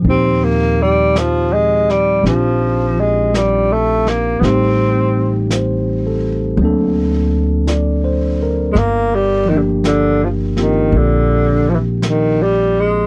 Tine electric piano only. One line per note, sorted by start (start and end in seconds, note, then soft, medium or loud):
0.00 4.41 A#2 soft
0.00 4.40 F3 soft
0.05 2.23 C4 soft
0.05 4.44 D#4 soft
0.10 2.26 G4 soft
2.24 4.42 C4 soft
2.24 4.43 D4 soft
2.24 4.43 F4 soft
2.24 4.44 G4 soft
4.44 6.59 G3 soft
4.44 6.59 A3 soft
4.44 6.59 C4 soft
4.44 6.60 D#4 soft
4.44 6.60 G4 soft
5.53 6.38 C5 soft
6.07 6.64 A4 soft
6.59 8.75 F#3 soft
6.59 8.76 A#3 soft
6.59 8.77 C4 soft
6.59 8.77 D4 soft
6.65 8.78 A4 soft
7.69 8.37 D5 soft
8.04 8.60 C5 soft
8.43 8.97 A#4 soft
9.45 13.07 F3 soft
9.52 10.56 A#3 soft
9.52 13.07 D4 soft
9.57 10.58 G4 soft
10.57 13.07 A#3 soft
10.57 13.07 C4 soft
10.57 13.07 F4 soft
10.57 13.07 G4 soft